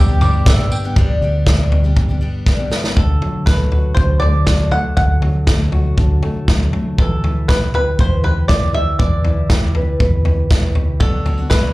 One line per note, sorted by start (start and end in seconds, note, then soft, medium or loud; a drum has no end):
0.00 0.92 G1 medium
0.00 0.92 G2 medium
0.00 0.18 G3 medium
0.00 0.19 D4 medium
0.00 0.68 G4 loud
0.00 0.19 B4 medium
0.00 0.20 D5 medium
0.00 0.67 D5 medium
0.00 0.70 G5 medium
0.00 0.20 D6 medium
0.00 0.46 E6 medium
0.08 0.20 G3 soft
0.08 0.21 B3 soft
0.08 0.21 D4 soft
0.08 0.21 G4 medium
0.20 0.43 G1 medium
0.20 0.96 G3 medium
0.20 0.46 G3 medium
0.20 0.46 B3 medium
0.20 0.96 D4 soft
0.20 0.46 D4 medium
0.20 0.47 G4 medium
0.20 0.97 B4 soft
0.20 0.97 D5 medium
0.20 0.96 D6 medium
0.20 floor tom medium
0.20 tambourine soft
0.46 0.89 G1 medium
0.46 0.59 G2 medium
0.46 0.59 D3 medium
0.46 0.59 G3 medium
0.46 0.59 B3 medium
0.46 0.58 D4 medium
0.46 0.58 G4 loud
0.46 0.97 E6 medium
0.46 kick loud
0.46 snare loud
0.46 tambourine medium
0.59 0.84 G3 soft
0.59 0.84 B3 medium
0.59 0.84 D4 medium
0.59 0.83 G4 medium
0.71 0.96 G5 medium
0.71 tambourine medium
0.84 0.96 G3 soft
0.84 0.97 B3 medium
0.84 0.97 D4 medium
0.84 0.96 G4 medium
0.96 1.07 G1 medium
0.96 1.22 G2 medium
0.96 1.22 D3 medium
0.96 1.21 G3 medium
0.96 1.21 B3 medium
0.96 1.22 D4 medium
0.96 1.22 G4 medium
0.96 kick medium
0.96 floor tom medium
1.21 1.98 D2 medium
1.21 1.47 G3 medium
1.21 1.47 B3 medium
1.21 1.47 D4 medium
1.21 1.48 G4 medium
1.47 1.84 G2 medium
1.47 1.85 D3 medium
1.47 1.85 G3 medium
1.47 1.84 B3 medium
1.47 1.84 D4 medium
1.47 1.83 G4 medium
1.47 kick medium
1.47 snare loud
1.72 floor tom medium
1.84 2.10 G3 soft
1.84 2.09 B3 soft
1.84 2.09 D4 medium
1.84 2.08 G4 medium
1.96 2.83 G1 medium
1.96 kick medium
1.96 floor tom medium
2.09 2.20 G3 soft
2.09 2.20 B3 soft
2.09 2.21 D4 soft
2.09 2.21 G4 soft
2.21 2.45 G3 medium
2.21 2.46 B3 medium
2.21 2.46 D4 medium
2.21 2.46 G4 medium
2.46 2.59 G2 medium
2.46 2.59 D3 medium
2.46 2.59 G3 medium
2.46 2.58 B3 medium
2.46 2.58 D4 medium
2.46 2.57 G4 medium
2.46 kick medium
2.46 snare soft
2.58 2.70 G3 soft
2.58 2.70 B3 soft
2.58 2.71 D4 soft
2.58 2.71 G4 soft
2.71 2.84 G3 medium
2.71 2.84 B3 medium
2.71 2.84 D4 medium
2.71 2.83 G4 medium
2.71 snare medium
2.84 2.98 G3 soft
2.84 2.97 B3 soft
2.84 2.97 D4 soft
2.84 2.97 G4 soft
2.84 snare medium
2.97 3.83 D2 medium
2.97 4.95 D3 medium
2.97 3.46 A4 medium
2.97 kick medium
2.97 floor tom medium
3.22 4.47 F#3 soft
3.22 floor tom medium
3.46 4.22 A3 soft
3.46 3.98 B4 medium
3.46 kick loud
3.46 snare medium
3.46 floor tom medium
3.72 5.74 F#4 soft
3.72 floor tom medium
3.95 4.84 D2 medium
3.95 4.19 C5 medium
3.95 kick medium
3.95 floor tom medium
3.99 4.95 D4 medium
4.20 4.72 A3 soft
4.20 4.71 D5 medium
4.20 floor tom medium
4.47 5.23 F#3 medium
4.47 kick medium
4.47 snare medium
4.47 floor tom medium
4.71 5.48 A3 soft
4.71 4.96 F#5 medium
4.71 floor tom medium
4.97 5.84 D2 medium
4.97 6.96 D3 medium
4.97 5.44 F#5 medium
4.97 kick medium
4.97 floor tom medium
5.22 6.47 F#3 medium
5.22 floor tom medium
5.47 6.23 A3 medium
5.47 kick loud
5.47 snare medium
5.47 floor tom medium
5.72 7.99 F#4 medium
5.72 floor tom medium
5.97 6.98 D2 medium
5.97 6.96 D4 soft
5.97 kick medium
5.97 floor tom medium
6.23 6.73 A3 soft
6.23 floor tom medium
6.48 6.98 F#3 medium
6.48 kick medium
6.48 snare medium
6.48 floor tom medium
6.73 6.99 A3 medium
6.73 floor tom medium
6.98 7.85 E2 medium
6.98 8.99 E3 medium
6.98 7.51 A4 medium
6.98 kick medium
6.98 floor tom medium
7.24 8.49 E4 medium
7.24 floor tom medium
7.48 7.74 G4 medium
7.48 7.74 B4 medium
7.48 kick medium
7.48 snare medium
7.48 floor tom medium
7.74 8.24 G4 medium
7.74 8.00 B4 medium
7.74 floor tom medium
7.99 8.86 E2 medium
7.99 9.76 B4 medium
7.99 8.24 C5 medium
7.99 kick medium
7.99 floor tom medium
8.24 8.75 G4 soft
8.24 8.48 B4 medium
8.24 floor tom medium
8.48 8.97 E4 medium
8.48 8.74 D5 medium
8.48 kick medium
8.48 snare medium
8.48 floor tom medium
8.74 8.98 G4 medium
8.74 8.98 E5 medium
8.74 floor tom medium
8.99 9.86 E2 medium
8.99 11.01 E3 medium
8.99 9.46 D5 medium
8.99 kick medium
8.99 floor tom medium
9.25 10.49 E4 medium
9.25 floor tom medium
9.50 10.25 G4 medium
9.50 kick medium
9.50 snare loud
9.50 floor tom medium
9.75 10.00 B4 medium
9.75 floor tom medium
10.00 11.01 E2 medium
10.00 10.98 B4 medium
10.00 kick medium
10.00 floor tom medium
10.25 10.75 G4 soft
10.25 floor tom medium
10.50 10.98 E4 soft
10.50 kick medium
10.50 snare medium
10.50 floor tom medium
10.75 10.98 G4 medium
10.75 floor tom medium
11.00 11.73 B1 medium
11.00 11.25 B2 medium
11.00 11.24 F#3 medium
11.00 11.25 B3 medium
11.00 11.26 D4 medium
11.00 11.26 F#4 medium
11.00 11.47 A4 medium
11.00 kick medium
11.00 floor tom medium
11.26 11.38 F#3 medium
11.26 11.38 B3 soft
11.26 11.38 D4 medium
11.26 11.36 F#4 medium
11.26 floor tom medium
11.38 11.50 B3 soft
11.38 11.50 D4 soft
11.38 11.51 F#4 medium
11.50 11.73 B2 medium
11.50 11.73 F#3 medium
11.50 11.73 B3 medium
11.50 11.73 D4 medium
11.50 11.73 F#4 medium
11.50 11.73 B4 medium
11.50 kick medium
11.50 snare medium
11.50 floor tom medium